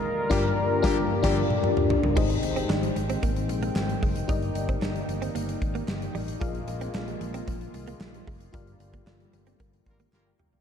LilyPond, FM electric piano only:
\new Staff \with { instrumentName = "FM electric piano" } { \time 4/4 \key aes \lydian \tempo 4 = 113 << { r1 | aes,4. r2 r8 | g,4. r2 r8 | bes,4. r2 r8 |
g,4. r4. r16 <g'' bes''>16 g''16 <d'' f''>16 | } \\ { r8 <g, d' f' g' bes' d''>8 r8 <g, d' f' g' bes' d''>8 r16 <g, d' f' g' bes' d''>8 r4 r16 | <ees' g' aes' c'' ees''>1 | <ees' g' bes' d'' ees''>1 | <f' aes' bes' d'' ees'' f''>1 |
<f' g' bes' d'' f''>1 | } >> }